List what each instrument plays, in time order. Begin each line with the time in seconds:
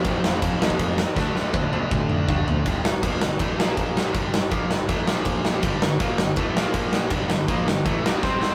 Already playing: distorted electric guitar F2 C3 F3 A3 C4
0.04 picked electric bass F1, distorted electric guitar F2 C3 F3, kick, crash
0.24 picked electric bass F1, snare
0.42 picked electric bass F1, kick, crash
0.60 picked electric bass D#2, distorted electric guitar F2 C3 F3, snare
0.70 kick
0.79 picked electric bass F1, kick, crash
0.98 snare
1.16 picked electric bass D2, distorted electric guitar D3 F3 A3 D4, kick, snare
1.36 picked electric bass D2, snare
1.54 picked electric bass D2, kick, high tom
1.72 picked electric bass D2, distorted electric guitar D3 A3 D4, high tom
1.91 picked electric bass D2, kick, mid tom
2.09 picked electric bass D2, mid tom
2.28 picked electric bass G2, distorted electric guitar D3 A3 D4, kick, floor tom
2.47 picked electric bass D2, floor tom
2.66 picked electric bass G1, distorted electric guitar G2 D3 G3, kick, crash
2.84 picked electric bass G1, distorted electric guitar G2 D3, snare
3.02 picked electric bass A#1, distorted electric guitar A#2 F3 A#3, kick, crash
3.21 picked electric bass G1, distorted electric guitar G2 D3, snare
3.39 picked electric bass A1, distorted electric guitar A2 E3 A3, kick, crash
3.58 picked electric bass A#1, distorted electric guitar A#2 F3 A#3, snare
3.77 kick, crash
3.97 snare
4.14 picked electric bass G1, distorted electric guitar G2 D3 G3, kick, crash
4.33 picked electric bass G1, distorted electric guitar G2 D3, snare
4.50 picked electric bass A#1, distorted electric guitar A#2 F3 A#3, kick, crash
4.70 picked electric bass G1, distorted electric guitar G2 D3, snare
4.88 picked electric bass A1, distorted electric guitar A2 E3 A3, kick, crash
5.06 picked electric bass A#1, distorted electric guitar A#2 F3 A#3, snare
5.25 kick, crash
5.45 snare
5.62 picked electric bass G1, distorted electric guitar G2 D3 G3, kick, crash
5.82 picked electric bass G1, distorted electric guitar G2 D3, snare
5.99 picked electric bass A#1, distorted electric guitar A#2 F3 A#3, kick, crash
6.18 picked electric bass G1, distorted electric guitar G2 D3, snare
6.36 picked electric bass A1, distorted electric guitar A2 E3 A3, kick, crash
6.55 picked electric bass A#1, distorted electric guitar A#2 F3 A#3, snare
6.74 kick, crash
6.93 snare
7.10 picked electric bass G1, distorted electric guitar G2 D3 G3, kick, crash
7.29 picked electric bass G1, distorted electric guitar G2 D3, snare
7.48 picked electric bass A#1, distorted electric guitar A#2 F3 A#3, kick, crash
7.68 picked electric bass G1, distorted electric guitar G2 D3, snare
7.85 picked electric bass A1, distorted electric guitar A2 E3 A3, kick, crash
8.04 picked electric bass A#1, distorted electric guitar A#2 F3 A#3, snare
8.22 picked electric bass C2, distorted electric guitar C3 G3 C4, overdriven electric guitar C4 C5, kick, snare
8.41 overdriven electric guitar C4 C5, snare